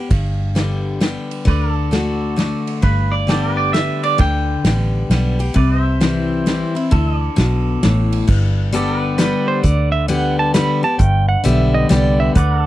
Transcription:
Already playing: B3 B4
0.11 G1 G2, kick, ride
0.55 D3 G3 B3 G4, snare, ride
1.00 D3 G3 B3 G4, snare, ride
1.31 ride
1.45 D2 D3 B4 D5, kick, ride
1.73 A4
1.91 D3 A3 D4 F#4, snare, ride
2.36 D3 A3 D4 F#4, snare, ride
2.67 ride
2.82 G1 G2 B4, kick, ride
3.12 D5
3.27 D3 G3 B3 G4 A4 D5, snare, ride
3.55 B4 D5
3.73 D3 G3 B3 G4 E5, snare, ride
4.03 D5, ride
4.18 D2 D3 G5, kick, ride
4.64 A1 D3 G3 B3 G4, snare, ride
5.10 B1 D3 G3 B3 G4, snare, ride
5.39 B3 G4, ride
5.54 C2 C3 B4 D5, kick, ride
5.76 C5
5.82 E5
6.00 E3 G3 C4 E4, snare, ride
6.46 E3 G3 C4 E4, snare, ride
6.75 C4 E4, ride
6.91 D2 D3 A4 E5, kick, ride
7.18 D5
7.36 B1 B2, snare, ride
7.83 A1 A2, snare, ride
8.12 ride
8.28 G1 G2, kick, crash
8.72 D3 G3 B3 G4 A4 D5, closed hi-hat
9.00 B4
9.18 D3 G3 B3 G4 B4, snare, closed hi-hat
9.48 C5
9.63 D2 D3 D5, kick, closed hi-hat
9.92 E5
10.08 D3 G3 B3 G4 F#5, closed hi-hat
10.39 A5
10.54 D3 G3 B3 G4 B5, snare, closed hi-hat
10.83 B3 G4 A5
10.99 G1 G2 G5, kick, closed hi-hat
11.29 F#5
11.44 B1 D3 G3 B3 G4 E5, closed hi-hat
11.74 D#5
11.89 C2 D3 G3 B3 G4 D5, snare, closed hi-hat
12.20 E5
12.35 D2 D3 B4 D5 F#5, kick, closed hi-hat
12.62 A4

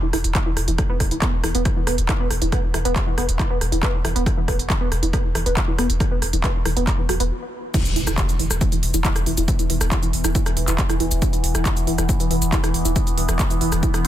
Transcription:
0.03 E3
0.13 E1 E3, cross-stick, open hi-hat
0.24 E1, closed hi-hat
0.35 E3, kick, cross-stick, clap, closed hi-hat
0.46 E3
0.57 E1, cross-stick, open hi-hat
0.68 E1 E3, closed hi-hat
0.78 E3, kick, cross-stick, closed hi-hat
0.90 B3
1.00 E1, kick, cross-stick, open hi-hat
1.11 E1 E3, closed hi-hat
1.22 B3, kick, cross-stick, clap, closed hi-hat
1.44 E1 E3, cross-stick, open hi-hat
1.55 E1 B3, closed hi-hat
1.65 kick, cross-stick, closed hi-hat
1.77 E3
1.87 E1 B3, cross-stick, open hi-hat
1.98 E1, closed hi-hat
2.09 E3, kick, cross-stick, clap, closed hi-hat
2.20 B3
2.31 E1, cross-stick, open hi-hat
2.42 E1 E3, closed hi-hat
2.52 B3, kick, cross-stick, closed hi-hat
2.74 E1 E3, cross-stick, open hi-hat
2.85 E1 B3, closed hi-hat
2.96 kick, cross-stick, clap, closed hi-hat
3.07 E3
3.18 E1 B3, cross-stick, open hi-hat
3.29 E1, closed hi-hat
3.39 E3, kick, cross-stick, clap, closed hi-hat
3.50 B3
3.61 E1, cross-stick, open hi-hat
3.72 E1 E3, closed hi-hat
3.83 B3, kick, cross-stick, clap, closed hi-hat
4.04 E1 E3, cross-stick, open hi-hat
4.16 E1 B3, closed hi-hat
4.26 kick, cross-stick, closed hi-hat
4.37 E3
4.48 E1 B3, kick, cross-stick, open hi-hat
4.59 E1, closed hi-hat
4.70 E3, kick, cross-stick, clap, closed hi-hat
4.81 B3
4.92 E1, cross-stick, open hi-hat
5.03 E1 E3, closed hi-hat
5.13 B3, kick, cross-stick, closed hi-hat
5.35 E1 E3, cross-stick, open hi-hat
5.46 E1 B3, closed hi-hat
5.57 kick, cross-stick, clap, closed hi-hat
5.68 E3
5.79 E1 B3, cross-stick, open hi-hat
5.90 E1, closed hi-hat
6.00 E3, kick, cross-stick, closed hi-hat
6.11 B3
6.22 E1, cross-stick, open hi-hat
6.33 E1 E3, closed hi-hat
6.44 B3, kick, cross-stick, clap, closed hi-hat
6.65 E1 E3, cross-stick, open hi-hat
6.77 E1 B3, closed hi-hat
6.87 kick, cross-stick, clap, closed hi-hat
6.99 E3
7.09 E1 F#3, cross-stick, open hi-hat
7.20 E1 B3, closed hi-hat
7.74 E3 B3, kick, closed hi-hat, crash, impact, shaker
7.85 closed hi-hat, shaker
7.96 E1 E3, open hi-hat
8.07 E1 E3, cross-stick, closed hi-hat, shaker
8.18 kick, clap, closed hi-hat, shaker
8.29 E3, closed hi-hat, shaker
8.39 E1 E3, open hi-hat
8.50 E1, cross-stick, closed hi-hat, shaker
8.61 E3, kick, closed hi-hat, shaker
8.72 E3, closed hi-hat, shaker
8.83 E1, open hi-hat
8.94 E1 E3, closed hi-hat, shaker
9.05 E3, kick, clap, closed hi-hat, shaker
9.16 cross-stick, closed hi-hat, shaker
9.26 E1 E3, open hi-hat
9.37 E1 E3, closed hi-hat, shaker
9.48 kick, closed hi-hat, shaker
9.59 E3, closed hi-hat, shaker
9.70 E1 E3, open hi-hat
9.81 E1, cross-stick, closed hi-hat, shaker
9.92 E3, kick, clap, closed hi-hat, shaker
10.03 E3, closed hi-hat, shaker
10.13 E1, open hi-hat
10.24 E1 E3, cross-stick, closed hi-hat, shaker
10.35 E3, kick, closed hi-hat, shaker
10.46 cross-stick, closed hi-hat, shaker
10.57 E1 E3, open hi-hat
10.68 E1 E3, clap, closed hi-hat, shaker
10.79 kick, clap, closed hi-hat, shaker
10.90 E3, cross-stick, closed hi-hat, shaker
11.00 E1 E3, open hi-hat
11.11 E1, closed hi-hat, shaker
11.22 E3, kick, closed hi-hat, shaker
11.33 E3, closed hi-hat, shaker
11.44 E1, open hi-hat
11.55 E1 E3, cross-stick, closed hi-hat, shaker
11.65 E3, kick, clap, closed hi-hat, shaker
11.77 closed hi-hat, shaker
11.87 E1 E3, open hi-hat
11.98 E1 E3, cross-stick, closed hi-hat, shaker
12.09 kick, closed hi-hat, shaker
12.20 E3, closed hi-hat, shaker
12.31 E1 E3, open hi-hat
12.42 E1, closed hi-hat, shaker
12.52 E3, kick, clap, closed hi-hat, shaker
12.63 E3, cross-stick, closed hi-hat, shaker
12.74 E1, open hi-hat
12.85 E1 E3, closed hi-hat, shaker
12.96 E3, kick, closed hi-hat, shaker
13.07 closed hi-hat, shaker
13.18 E1 E3, open hi-hat
13.29 E1 E3, cross-stick, closed hi-hat, shaker
13.39 kick, clap, closed hi-hat, shaker
13.50 E3, closed hi-hat, shaker
13.61 E1 E3, open hi-hat
13.72 E1, cross-stick, closed hi-hat, shaker
13.83 E3, kick, closed hi-hat, shaker
13.94 E3, cross-stick, closed hi-hat, shaker

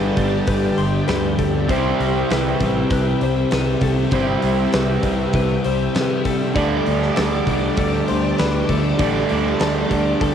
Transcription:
Already playing: G1 G2 D3 G3 B3 D4 G4 B4 D5 G5 A5
0.17 G1 G2 D3 G3, kick, open hi-hat
0.47 G1 B4, kick, open hi-hat
0.78 G1 C6, open hi-hat
1.08 D2 B4, snare, open hi-hat
1.38 A4, kick, open hi-hat
1.68 C2 C3 G3 C4 E4 C5 E5, kick, open hi-hat
1.73 G4
2.00 C2, open hi-hat
2.30 C2 B4, snare, open hi-hat
2.60 A1 C3 G3 C4, kick, open hi-hat
2.90 C2 B4, kick, open hi-hat
3.21 C2 C5, open hi-hat
3.51 C2 B4, snare, open hi-hat
3.81 C2 A4, kick, open hi-hat
4.11 G1 C3 G3 C4 E4 C5, kick, open hi-hat
4.16 G4
4.42 C2, open hi-hat
4.73 C2 B4, snare, open hi-hat
5.02 C2 C3 G3 C4, kick, open hi-hat
5.33 C2 B4, kick, open hi-hat
5.64 C2 C5, open hi-hat
5.95 C3 B4, snare, open hi-hat
6.25 A4, kick, open hi-hat
6.55 D2 D3 G3 A3 D4 G4 A4 D5 A5 D6, kick, open hi-hat
6.86 D2, open hi-hat
7.02 snare
7.16 D2 A4, snare, open hi-hat
7.46 C2 D3 A3 D4, kick, open hi-hat
7.77 D2 A4, kick, open hi-hat
8.08 D2 C5, open hi-hat
8.38 D2 B4, snare, open hi-hat
8.69 D2 A4, kick, open hi-hat
8.98 A1 D3 G3 A3 D4 A4 D5, kick, open hi-hat
9.29 D2, open hi-hat
9.60 D2 A4, snare, open hi-hat
9.88 D2 A3 D4, kick, open hi-hat
9.92 D3
10.21 D2 A4, kick, open hi-hat

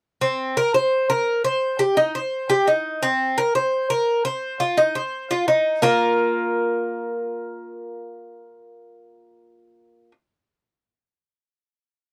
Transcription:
0.21 C4
0.57 A#4
0.74 C5
1.10 A#4
1.44 C5
1.79 G4
1.97 D#4
2.15 C5
2.50 G4
2.67 D#4
3.03 C4
3.38 A#4
3.55 C5
3.90 A#4
4.25 C5
4.60 F4
4.77 D#4
4.95 C5
5.31 F4
5.48 D#4
5.82 A#3 F4 A#4

